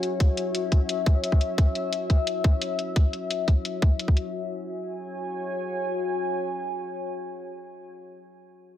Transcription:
Already playing: F#4 C#5 E5
0.03 closed hi-hat
0.20 kick, closed hi-hat
0.37 closed hi-hat
0.55 closed hi-hat
0.72 kick, closed hi-hat
0.89 closed hi-hat
1.06 kick, closed hi-hat
1.24 closed hi-hat
1.32 kick
1.41 closed hi-hat
1.58 kick, closed hi-hat
1.75 closed hi-hat
1.93 closed hi-hat
2.10 kick, closed hi-hat
2.27 closed hi-hat
2.44 kick, closed hi-hat
2.62 closed hi-hat
2.79 closed hi-hat
2.96 kick, closed hi-hat
3.13 closed hi-hat
3.31 closed hi-hat
3.48 kick, closed hi-hat
3.65 closed hi-hat
3.82 kick, closed hi-hat
3.99 closed hi-hat
4.08 kick
4.17 closed hi-hat
4.34 F#4 C#5 G#5

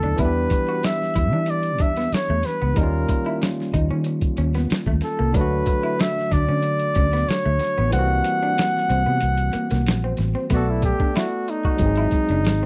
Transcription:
Already playing: D2 F#3 A3 B3 D4 E4 A4
0.03 D4, floor tom
0.16 E2 E3 G3 E4, kick, closed hi-hat
0.20 B3 D4 B4
0.25 G4
0.50 muted clean electric guitar stroke, kick, closed hi-hat
0.69 F#4
0.83 E5, muted clean electric guitar stroke, snare, closed hi-hat
1.02 snare
1.16 E2 E4, kick, closed hi-hat
1.33 E3 D4
1.46 D5, muted clean electric guitar stroke, closed hi-hat
1.63 closed hi-hat
1.78 E2 D4 E5, kick, closed hi-hat
1.97 B3, snare, closed hi-hat
2.12 C#5, muted fingered electric bass stroke, snare, closed hi-hat
2.30 E2 A3
2.43 B4, muted clean electric guitar stroke, snare, closed hi-hat
2.62 C#2 B3
2.74 D#2 D#3 G3 D#4 A#4, kick, closed hi-hat
2.79 A#3 C#4
2.83 F4
3.08 muted clean electric guitar stroke, kick, closed hi-hat
3.26 E4
3.42 muted clean electric guitar stroke, snare, closed hi-hat
3.60 snare
3.74 D#2 D#4, kick, closed hi-hat
3.91 D#3 C#4
4.04 muted clean electric guitar stroke, closed hi-hat
4.21 kick, closed hi-hat
4.37 D#2 C#4, closed hi-hat
4.54 B3, snare, closed hi-hat
4.70 muted fingered electric bass stroke, snare, closed hi-hat
4.86 D#2 A3, kick
5.01 A4, muted clean electric guitar stroke, snare, closed hi-hat
5.19 C2 A#3
5.32 D2 D3 F#3 D4 B4, kick, closed hi-hat
5.36 A3 D4
5.41 F#4
5.66 muted clean electric guitar stroke, kick, closed hi-hat
5.83 E4
5.99 E5, muted clean electric guitar stroke, snare, closed hi-hat
6.18 snare
6.31 D2 D4 D5, kick, closed hi-hat
6.49 D3 C#4
6.62 muted clean electric guitar stroke, closed hi-hat
6.79 closed hi-hat
6.95 D2 C#4, kick, closed hi-hat
7.13 B3, snare, closed hi-hat
7.29 C#5, muted fingered electric bass stroke, snare, closed hi-hat
7.46 D2 A3
7.59 muted clean electric guitar stroke, snare, closed hi-hat
7.78 A1 B3
7.90 C2 E3 G3 C4 F#5, closed hi-hat
7.94 A#3 C4
7.99 F#4
8.24 muted clean electric guitar stroke, closed hi-hat
8.43 D4
8.58 muted clean electric guitar stroke, snare, closed hi-hat
8.77 snare
8.90 C2 C4, closed hi-hat
9.06 C3 B3
9.20 C2, muted clean electric guitar stroke, closed hi-hat
9.37 closed hi-hat
9.53 A#3, muted fingered electric bass stroke, closed hi-hat
9.70 C2 A#3, snare, closed hi-hat
9.86 A#1, snare, closed hi-hat
10.04 C4
10.17 A1, muted clean electric guitar stroke, snare, closed hi-hat
10.35 C4
10.50 B1 A3 B3 F#4, kick, closed hi-hat
10.55 A4 D5
10.70 E4
10.82 G4, muted clean electric guitar stroke, kick, closed hi-hat
11.00 D4, kick
11.16 E4 F#4, snare, closed hi-hat
11.48 D#4, muted clean electric guitar stroke, closed hi-hat
11.65 F#4, kick
11.77 G#1 F#3 G#3, kick, closed hi-hat
11.81 C4 D#4
11.86 G#4
11.96 E4, closed hi-hat
12.11 muted fingered electric bass stroke, muted clean electric guitar stroke, kick, closed hi-hat
12.29 F#1 D4, closed hi-hat
12.44 G#1, snare, closed hi-hat

